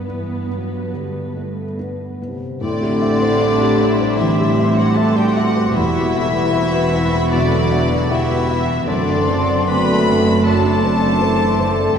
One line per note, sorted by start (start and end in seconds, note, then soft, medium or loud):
0.00 0.89 G2 soft
0.00 2.42 G2 soft
0.00 0.51 B3 soft
0.00 1.79 B3 medium
0.00 0.09 B4 soft
0.00 2.22 B4 soft
0.08 0.49 E3 soft
0.08 0.47 D4 soft
0.08 0.48 B4 soft
0.51 0.95 F#3 soft
0.51 0.90 B3 soft
0.51 0.90 B4 soft
0.94 1.63 D3 soft
0.94 1.38 G3 soft
1.36 1.79 A3 soft
1.36 1.76 B3 soft
1.36 1.76 B4 soft
1.79 2.23 B3 soft
1.79 2.18 D4 soft
1.79 2.18 B4 soft
2.22 2.59 B3 soft
2.22 2.59 B4 soft
2.26 2.65 C3 soft
2.61 5.72 A1 medium
2.61 4.14 A2 medium
2.61 5.72 A2 medium
2.61 2.99 A3 medium
2.61 3.38 C4 medium
2.61 4.21 D4 medium
2.61 4.93 E4 medium
2.61 4.15 G4 medium
2.61 4.15 D5 loud
2.61 4.16 C6 medium
2.65 4.16 D3 loud
2.82 3.14 G4 medium
3.02 3.41 C4 medium
3.02 3.33 E5 medium
3.22 3.53 C5 medium
3.41 4.18 G3 medium
3.41 3.81 C4 medium
3.41 4.18 D4 medium
3.41 3.73 E5 medium
3.62 3.93 G4 medium
3.81 4.97 D4 medium
3.81 4.12 E5 soft
4.01 4.31 C5 medium
4.17 4.78 E3 medium
4.17 4.51 E3 soft
4.17 4.95 G3 medium
4.17 4.96 C4 medium
4.17 4.78 E4 medium
4.17 5.72 G4 medium
4.17 4.76 E5 medium
4.17 5.72 C6 medium
4.40 4.70 G4 soft
4.59 4.90 E5 medium
4.75 4.96 F#3 medium
4.75 4.97 F#4 medium
4.75 5.09 C5 medium
4.75 4.97 F#5 medium
4.95 6.54 G3 medium
4.95 5.75 A3 medium
4.95 5.16 A3 medium
4.95 5.76 C4 medium
4.95 5.75 F#4 medium
4.95 5.18 A4 medium
4.95 5.29 E5 medium
4.95 5.16 A5 medium
5.16 5.35 G3 medium
5.16 5.48 G3 medium
5.16 5.37 G4 medium
5.16 5.36 G5 medium
5.34 5.76 G3 medium
5.34 5.77 F#4 medium
5.34 5.68 E5 medium
5.34 5.75 F#5 medium
5.56 5.76 C5 soft
5.73 8.87 E1 medium
5.73 8.87 E2 medium
5.73 7.27 E2 medium
5.73 7.29 E3 medium
5.73 6.51 B3 medium
5.73 6.15 B3 medium
5.73 6.51 E4 medium
5.73 7.30 E4 loud
5.73 8.05 F#4 medium
5.73 7.28 E5 loud
5.73 8.04 B5 medium
5.95 6.26 F#4 medium
6.15 6.53 A3 medium
6.15 6.46 E5 medium
6.33 6.65 B4 medium
6.53 6.92 E3 medium
6.53 7.32 C4 medium
6.53 8.06 E4 medium
6.53 7.30 B4 medium
6.53 6.84 E5 medium
6.73 7.04 F#4 soft
6.93 7.31 E3 medium
6.93 7.25 E5 medium
7.13 7.44 B4 medium
7.30 7.63 B2 medium
7.30 8.10 D3 medium
7.30 7.68 F#3 medium
7.30 8.08 B3 medium
7.30 8.10 D4 medium
7.30 8.10 D5 loud
7.52 7.83 F#4 soft
7.69 8.08 F#3 medium
7.69 8.02 E5 medium
7.92 8.22 B4 medium
8.09 8.87 E3 medium
8.09 8.70 E3 medium
8.09 8.85 B3 medium
8.09 8.70 E4 medium
8.09 8.48 F#4 medium
8.09 8.48 G4 medium
8.09 8.41 E5 medium
8.09 8.88 E5 medium
8.09 8.85 B5 medium
8.31 8.61 F#4 medium
8.49 8.89 E4 medium
8.49 8.87 F#4 medium
8.49 8.80 E5 medium
8.69 8.87 B4 medium
8.86 11.92 F#1 medium
8.86 10.41 F#2 medium
8.86 11.92 F#2 medium
8.86 9.66 D3 medium
8.86 9.27 A3 medium
8.86 9.67 C4 medium
8.86 9.38 D4 medium
8.86 9.66 D4 medium
8.86 10.18 D4 medium
8.86 9.66 D5 medium
8.86 10.14 C6 medium
9.09 9.40 D4 medium
9.26 9.67 C4 medium
9.26 9.60 C5 medium
9.50 9.81 D5 medium
9.67 11.20 F#3 medium
9.67 10.44 A3 loud
9.67 10.06 B3 medium
9.67 10.00 C4 medium
9.67 11.17 D4 medium
9.67 10.46 B4 medium
9.67 10.43 B5 loud
9.91 10.20 D4 medium
10.06 10.43 A3 medium
10.06 10.38 C4 medium
10.27 10.57 D5 medium
10.44 11.93 F#2 medium
10.44 10.81 A3 medium
10.44 11.97 A3 medium
10.44 11.92 D4 medium
10.44 11.97 A4 medium
10.44 11.97 A5 loud
10.44 11.92 C6 medium
10.64 10.94 D4 medium
10.82 11.19 C4 medium
10.82 11.13 C5 medium
11.02 11.32 D5 medium
11.20 11.57 E3 medium
11.20 11.96 A3 medium
11.20 11.96 C4 medium
11.20 11.51 C5 medium
11.40 11.70 D4 medium
11.58 11.96 D3 medium
11.58 11.89 C5 medium
11.79 11.97 D5 medium